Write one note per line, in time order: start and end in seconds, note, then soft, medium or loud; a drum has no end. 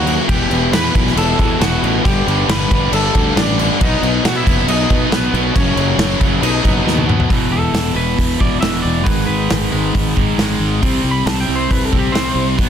0.00 0.17 D#2 medium
0.00 0.27 F#3 medium
0.00 0.28 A#3 medium
0.00 0.27 C#4 medium
0.00 0.25 F#4 medium
0.00 0.27 A#4 loud
0.00 0.30 F#5 loud
0.06 0.27 F#2 medium
0.06 0.27 C#3 medium
0.06 0.28 F#3 medium
0.06 crash medium
0.27 0.45 E1 medium
0.27 0.48 E2 loud
0.27 0.49 B2 medium
0.27 0.50 E3 loud
0.27 2.03 G3 medium
0.27 5.52 B3 medium
0.27 2.03 E4 medium
0.27 0.69 G4 medium
0.27 5.51 B4 medium
0.27 0.74 G5 loud
0.27 kick loud
0.27 crash medium
0.49 0.67 E1 medium
0.49 0.70 E2 medium
0.49 0.71 B2 medium
0.49 0.72 E3 medium
0.49 crash medium
0.72 0.92 E2 medium
0.72 0.89 E2 loud
0.72 0.93 B2 loud
0.72 0.94 E3 loud
0.72 1.14 B4 medium
0.72 1.18 B5 loud
0.72 snare loud
0.72 crash medium
0.94 1.12 B1 medium
0.94 1.14 E2 medium
0.94 1.15 B2 medium
0.94 1.15 E3 loud
0.94 kick loud
0.94 crash medium
1.07 snare soft
1.15 1.33 E1 loud
1.15 1.37 E2 loud
1.15 1.38 B2 loud
1.15 1.38 E3 loud
1.15 1.58 A4 medium
1.15 1.63 A5 loud
1.15 crash medium
1.38 1.59 E2 medium
1.38 1.56 E2 loud
1.38 1.60 B2 medium
1.38 1.60 E3 medium
1.38 kick medium
1.38 crash medium
1.60 1.77 E1 medium
1.60 1.81 E2 loud
1.60 1.82 B2 loud
1.60 1.82 E3 loud
1.60 2.01 F#4 medium
1.60 2.06 F#5 loud
1.60 snare loud
1.60 crash medium
1.82 1.99 A1 loud
1.82 2.03 E2 medium
1.82 2.03 B2 medium
1.82 2.04 E3 medium
1.82 crash medium
2.04 2.22 G1 medium
2.04 2.25 G2 medium
2.04 3.78 D3 medium
2.04 2.26 D3 loud
2.04 2.27 G3 loud
2.04 2.45 G4 medium
2.04 3.78 G4 medium
2.04 2.51 G5 loud
2.04 kick loud
2.04 crash medium
2.26 2.43 G1 medium
2.26 2.47 G2 medium
2.26 2.48 D3 medium
2.26 2.49 G3 medium
2.26 crash medium
2.48 2.65 G1 medium
2.48 2.69 G2 medium
2.48 2.70 D3 medium
2.48 2.71 G3 loud
2.48 2.90 B4 medium
2.48 2.95 B5 loud
2.48 snare loud
2.48 crash loud
2.71 2.87 G1 medium
2.71 2.91 G2 medium
2.71 2.92 D3 medium
2.71 2.93 G3 loud
2.71 kick medium
2.71 crash medium
2.92 3.09 G1 medium
2.92 3.13 G2 loud
2.92 3.14 D3 loud
2.92 3.14 G3 loud
2.92 3.34 A4 medium
2.92 3.39 A5 medium
2.92 crash medium
3.14 3.31 D2 loud
3.14 3.35 G2 medium
3.14 3.35 D3 medium
3.14 3.36 G3 medium
3.14 kick medium
3.14 crash medium
3.36 3.69 A1 loud
3.36 3.57 G2 loud
3.36 3.57 D3 loud
3.36 3.58 G3 loud
3.36 3.77 D4 medium
3.36 3.78 D5 medium
3.36 snare loud
3.36 crash medium
3.58 3.78 G2 medium
3.58 3.79 D3 loud
3.58 3.79 G3 medium
3.58 crash medium
3.80 3.97 B1 medium
3.80 4.01 B2 loud
3.80 5.53 F#3 medium
3.80 4.02 F#3 loud
3.80 4.02 B3 loud
3.80 4.22 D#4 medium
3.80 7.27 F#4 medium
3.80 4.27 D#5 loud
3.80 kick loud
3.80 crash loud
4.02 4.19 B1 medium
4.02 4.22 B2 medium
4.02 4.23 F#3 medium
4.02 4.23 B3 medium
4.02 crash medium
4.23 4.43 B2 medium
4.23 4.41 B2 loud
4.23 4.45 F#3 medium
4.23 4.44 B3 loud
4.23 4.35 F#4 medium
4.23 snare loud
4.23 crash medium
4.28 4.36 F#5 loud
4.36 4.66 E4 medium
4.36 4.67 E5 medium
4.45 4.63 F#1 medium
4.45 4.65 B2 medium
4.45 4.66 F#3 medium
4.45 4.67 B3 loud
4.45 kick loud
4.45 crash medium
4.66 4.84 B1 medium
4.66 4.88 B2 loud
4.66 4.89 F#3 loud
4.66 4.89 B3 loud
4.66 5.08 D#4 medium
4.66 5.12 D#5 medium
4.66 crash medium
4.89 5.10 B2 medium
4.89 5.06 B2 loud
4.89 5.10 F#3 medium
4.89 5.12 B3 loud
4.89 kick medium
4.89 crash medium
5.11 5.28 B1 medium
5.11 5.32 B2 loud
5.11 5.33 F#3 loud
5.11 5.52 B3 medium
5.11 5.34 B3 loud
5.11 5.56 B4 medium
5.11 snare loud
5.11 crash medium
5.33 5.50 B1 loud
5.33 5.54 B2 medium
5.33 5.54 F#3 medium
5.33 5.54 B3 medium
5.33 crash medium
5.55 5.72 F#1 loud
5.55 5.75 F#2 loud
5.55 5.75 C#3 loud
5.55 6.42 C#3 medium
5.55 5.76 F#3 medium
5.55 6.42 A#3 medium
5.55 6.39 C#4 medium
5.55 6.42 A#4 medium
5.55 6.46 C#5 loud
5.55 kick loud
5.55 crash medium
5.76 5.93 F#1 medium
5.76 5.96 F#2 medium
5.76 5.97 C#3 medium
5.76 5.97 F#3 medium
5.76 crash medium
5.97 6.15 F#1 loud
5.97 6.17 F#2 medium
5.97 6.18 C#3 medium
5.97 6.19 F#3 medium
5.97 snare loud
5.97 crash medium
6.18 6.37 F#1 medium
6.18 6.40 F#2 loud
6.18 6.40 C#3 medium
6.18 6.40 F#3 medium
6.18 kick medium
6.18 crash medium
6.41 6.59 B1 loud
6.41 6.61 B2 medium
6.41 7.30 D#3 medium
6.41 6.61 F#3 loud
6.41 6.62 B3 loud
6.41 7.30 B3 medium
6.41 7.04 D#4 medium
6.41 7.30 A4 medium
6.41 7.05 D#5 medium
6.41 crash medium
6.62 6.81 F#1 loud
6.62 6.83 B2 medium
6.62 6.83 F#3 medium
6.62 6.84 B3 loud
6.62 kick medium
6.62 crash medium
6.84 7.19 D#2 medium
6.84 7.05 B2 loud
6.84 7.06 F#3 loud
6.84 7.06 B3 loud
6.84 snare medium
6.98 mid tom medium
7.06 7.28 B2 medium
7.06 7.28 F#3 medium
7.06 7.28 B3 medium
7.06 mid tom loud
7.20 floor tom medium
7.27 7.93 E2 medium
7.27 7.50 E2 medium
7.27 7.94 B2 loud
7.27 7.50 B2 medium
7.27 7.51 E3 medium
7.27 kick loud
7.31 7.50 E1 medium
7.31 7.93 E3 loud
7.31 open hi-hat medium
7.51 7.71 E1 medium
7.51 7.72 E2 medium
7.51 7.72 B2 medium
7.51 7.95 A4 medium
7.73 7.93 E1 medium
7.73 7.93 E2 medium
7.73 7.94 B2 medium
7.73 snare loud
7.73 open hi-hat medium
7.94 8.15 E1 medium
7.94 8.16 E2 medium
7.94 8.16 B2 medium
7.94 8.61 B2 medium
7.94 8.59 E3 medium
7.94 8.16 E3 medium
7.94 8.39 B4 medium
7.98 8.60 E2 medium
8.17 8.38 E1 medium
8.17 8.37 E2 medium
8.17 8.38 B2 medium
8.17 kick medium
8.17 open hi-hat medium
8.39 8.60 E1 medium
8.39 8.60 E2 medium
8.39 8.59 E2 medium
8.39 8.60 B2 medium
8.39 8.60 E3 medium
8.39 8.60 D5 medium
8.39 kick medium
8.61 8.82 E1 medium
8.61 9.03 E2 medium
8.61 8.82 E2 loud
8.61 9.05 B2 medium
8.61 8.83 B2 loud
8.61 8.83 E3 loud
8.61 9.06 E3 medium
8.61 8.82 E5 medium
8.61 snare loud
8.61 open hi-hat medium
8.82 9.06 E1 medium
8.82 9.03 E2 medium
8.82 9.04 B2 medium
8.82 9.04 D5 medium
9.04 9.26 G#1 medium
9.04 9.69 G#2 medium
9.04 9.26 G#2 medium
9.04 9.26 D#3 medium
9.04 9.71 D#3 medium
9.04 9.26 G#3 medium
9.04 9.25 B4 medium
9.04 kick loud
9.04 open hi-hat medium
9.08 9.70 G#3 medium
9.26 9.48 G#1 medium
9.26 9.47 G#2 medium
9.26 9.48 D#3 medium
9.26 10.12 B4 medium
9.50 9.70 G#1 medium
9.50 9.70 G#2 medium
9.50 9.70 D#3 medium
9.50 snare loud
9.50 open hi-hat medium
9.71 9.92 G#1 medium
9.71 9.92 G#2 medium
9.71 9.93 D#3 medium
9.71 10.37 D#3 medium
9.71 10.36 G#3 medium
9.71 9.93 G#3 medium
9.75 10.37 G#2 medium
9.94 10.14 G#1 medium
9.94 10.14 G#2 medium
9.94 10.14 D#3 loud
9.94 kick medium
9.94 open hi-hat medium
10.16 10.36 G#1 loud
10.16 10.36 G#2 medium
10.16 10.36 D#3 medium
10.16 10.37 D#3 medium
10.16 10.37 G#3 medium
10.16 kick medium
10.38 10.58 G#1 medium
10.38 10.58 G#2 medium
10.38 10.81 G#2 medium
10.38 10.59 D#3 loud
10.38 10.81 D#3 medium
10.38 10.59 G#3 loud
10.38 10.82 G#3 medium
10.38 snare medium
10.38 open hi-hat medium
10.59 10.79 G#1 medium
10.59 10.80 G#2 medium
10.59 10.80 D#3 medium
10.81 11.02 C2 medium
10.81 11.46 C3 medium
10.81 11.03 C3 medium
10.81 11.03 G3 medium
10.81 11.47 G3 medium
10.81 11.03 C4 medium
10.81 11.45 C4 loud
10.81 kick loud
10.81 open hi-hat medium
11.04 11.24 C2 medium
11.04 11.24 C3 medium
11.04 11.24 G3 medium
11.11 11.26 B5 medium
11.26 11.46 C2 medium
11.26 11.45 C3 medium
11.26 11.46 G3 medium
11.26 11.40 A5 medium
11.26 snare loud
11.26 open hi-hat medium
11.40 11.55 G5 medium
11.47 11.68 C2 medium
11.47 11.68 C3 medium
11.47 11.68 G3 medium
11.47 12.13 G3 medium
11.47 12.12 C4 medium
11.47 11.69 C4 medium
11.51 12.12 C3 medium
11.56 11.70 C5 medium
11.70 11.90 C2 medium
11.70 11.90 C3 medium
11.70 11.90 G3 medium
11.70 11.85 B4 medium
11.70 kick medium
11.70 open hi-hat medium
11.85 11.99 A4 medium
11.92 12.12 C2 medium
11.92 12.12 C3 medium
11.92 12.12 G3 medium
11.92 12.13 G3 medium
11.92 12.13 C4 medium
11.92 kick medium
11.99 12.13 G4 medium
12.12 12.33 C2 medium
12.12 12.34 C3 medium
12.12 12.56 C3 medium
12.12 12.34 G3 loud
12.12 12.57 G3 medium
12.12 12.35 C4 loud
12.12 12.56 C5 medium
12.12 snare loud
12.12 open hi-hat medium
12.17 12.58 C4 medium
12.35 12.59 C2 loud
12.35 12.56 C3 medium
12.35 12.56 G3 medium
12.57 12.69 B1 medium
12.57 12.69 B2 medium
12.57 12.69 F#3 medium
12.57 12.69 B3 medium
12.57 kick loud
12.57 open hi-hat medium
12.61 12.69 B3 loud